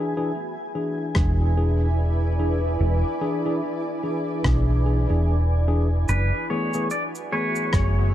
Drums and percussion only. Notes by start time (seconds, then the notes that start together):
1.15 kick, cross-stick
4.44 kick, cross-stick
6.09 cabasa
6.74 cabasa
6.90 cabasa
7.15 cabasa
7.56 cabasa
7.73 kick, cross-stick, cabasa